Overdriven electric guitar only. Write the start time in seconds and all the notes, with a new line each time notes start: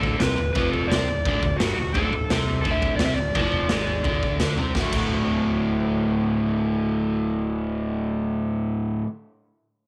Already playing: D2 D3
0.21 C3 C4
0.39 D2
0.55 F2 F3
0.91 C3 C4
1.08 D2
1.26 D2 D3
1.44 D2
1.60 G2 G3
1.78 D2
1.95 D2 D3
2.13 D2
2.30 C3 C4
2.64 D2 D3
3.00 C3 C4
3.18 D2
3.35 F2 F3
3.70 G#2 G#3
4.04 D2 D3
4.41 D3 D4
4.57 C3 C4
4.75 D2 A2 D3 A3
4.79 F#4
4.92 D2 A2 D3 A3 F#4